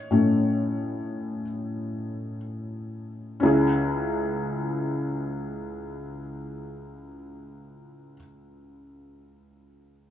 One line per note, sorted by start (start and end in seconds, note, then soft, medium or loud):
0.00 2.36 C#5 medium
0.11 1.41 A2 soft
0.11 1.41 A3 soft
0.11 1.42 C#4 soft
3.40 8.15 C#2 soft
3.40 8.12 C#4 soft
3.40 8.15 E4 soft
3.45 8.17 G#4 medium